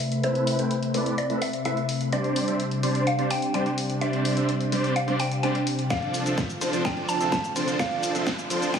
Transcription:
Already playing: C3 A3 B4 E5
0.12 closed hi-hat
0.23 A3 C4 E4 B4 C5 E5, closed hi-hat
0.35 closed hi-hat
0.47 open hi-hat
0.59 A3 C4 E4 B4 G5, closed hi-hat
0.71 closed hi-hat
0.83 closed hi-hat
0.94 A3 C4 E4 B4 D5, open hi-hat
1.06 closed hi-hat
1.18 D5, closed hi-hat
1.30 A3 C4 E4 B4 E5, closed hi-hat
1.42 E5, open hi-hat
1.53 closed hi-hat
1.65 A3 C4 E4 B4 E5, closed hi-hat
1.77 closed hi-hat
1.89 open hi-hat
2.01 closed hi-hat
2.12 G3 C4 D4 C5 D5, closed hi-hat
2.24 closed hi-hat
2.36 open hi-hat
2.48 G3 C4 D4 C5 E5, closed hi-hat
2.60 closed hi-hat
2.71 closed hi-hat
2.83 G3 C4 D4 C5 D5, open hi-hat
2.95 closed hi-hat
3.07 F5, closed hi-hat
3.19 G3 C4 D4 C5 D5, closed hi-hat
3.30 G5, open hi-hat
3.42 closed hi-hat
3.54 G3 C4 D4 C5 D5 G5, closed hi-hat
3.66 closed hi-hat
3.78 open hi-hat
3.90 closed hi-hat
4.01 G3 C4 D4 C5 D5 E5, closed hi-hat
4.13 closed hi-hat
4.25 open hi-hat
4.37 G3 C4 D4 C5 E5, closed hi-hat
4.49 closed hi-hat
4.61 closed hi-hat
4.72 G3 C4 D4 C5 D5, open hi-hat
4.84 closed hi-hat
4.96 F5, closed hi-hat
5.08 G3 C4 D4 C5 D5, closed hi-hat
5.20 G5, open hi-hat
5.31 closed hi-hat
5.43 G3 C4 D4 C5 D5 G5, closed hi-hat
5.55 closed hi-hat
5.67 open hi-hat
5.79 closed hi-hat
5.90 D2 F3 C4 D4 F4 A4 D5 F5, kick, snare, closed hi-hat, riser, shaker
6.02 closed hi-hat
6.14 open hi-hat, shaker
6.26 F3 C4 D4 A4 E5, closed hi-hat, shaker
6.38 kick, snare, closed hi-hat, shaker
6.50 closed hi-hat, shaker
6.61 F3 C4 D4 A4 C5, open hi-hat, shaker
6.73 closed hi-hat, shaker
6.85 G5, kick, snare, closed hi-hat, shaker
6.97 closed hi-hat
7.09 A5, open hi-hat, shaker
7.20 F3 C4 D4 A4 E5, closed hi-hat, shaker
7.32 A5, kick, snare, closed hi-hat, shaker
7.44 closed hi-hat, shaker
7.56 F3 C4 D4 A4 C5, open hi-hat, shaker
7.68 closed hi-hat, shaker
7.79 F5, kick, snare, closed hi-hat, shaker
7.91 closed hi-hat
8.03 open hi-hat, shaker
8.15 F3 C4 D4 A4 E5, closed hi-hat, shaker
8.27 kick, snare, closed hi-hat, shaker
8.39 closed hi-hat, shaker
8.50 F3 C4 D4 A4 C5, open hi-hat, shaker
8.62 closed hi-hat, shaker
8.74 G5, kick, snare, closed hi-hat, shaker

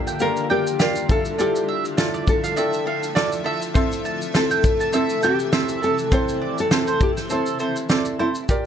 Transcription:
Already playing: D3 G3 A#3 F4 G4 A#4 D5 F5
0.02 A4
0.07 G5, shaker
0.20 A#3 F4 G4 A#4 D5 F5, shaker
0.36 shaker
0.50 F4 G4 A#4 D5 G5
0.67 shaker
0.79 F4 G4 A#4 D5 F5, snare, shaker
0.96 shaker
1.08 F3 A3 D4 E4 F4 A4 E5, kick, shaker
1.25 shaker
1.38 E4 F4 G4 A4 D5, shaker
1.56 shaker
1.68 E5
1.85 shaker
1.97 E4 F4 A4 D5, snare, shaker
2.14 D5, shaker
2.27 A4, kick, shaker
2.44 F5, shaker
2.56 D4 E4 F4 A4 D5 E5 G5, shaker
2.73 shaker
2.86 E4 F4 A4 F5
3.03 shaker
3.15 E4 F4 A4 D5, snare, shaker
3.32 shaker
3.44 E4 F4 A4 E5
3.62 shaker
3.74 C3 E3 C4 E4 A4 C5 E5, kick, shaker
3.92 shaker
4.05 A5, shaker
4.22 shaker
4.34 C4 E4 A4 C5, snare, shaker
4.51 G5, shaker
4.64 kick, shaker
4.80 A5, shaker
4.93 C4 E4 A4 C5 E5, shaker
5.09 shaker
5.23 C4 E4 G4 A4 G5, shaker
5.39 shaker
5.53 C4 E4 A4 C5 E5, snare, shaker
5.68 shaker
5.82 C4 E4 A4, shaker
5.98 shaker
6.11 C4 E4 A4 C5 G5, kick, shaker
6.28 shaker
6.42 D5
6.58 A4, shaker
6.71 C4 E4 A4 C5, snare, shaker
6.87 C5, shaker
7.00 G4, kick, shaker
7.17 C5, snare, shaker
7.29 C4 E4 A4 C5 E5, shaker
7.46 shaker
7.59 C4 E4 A4 C5, shaker
7.76 shaker
7.89 C4 E4 A4 C5 D5, snare, shaker
8.05 shaker
8.19 C4 E4 A4 C5
8.35 shaker
8.49 F4 G4 A#4 D5, kick, shaker

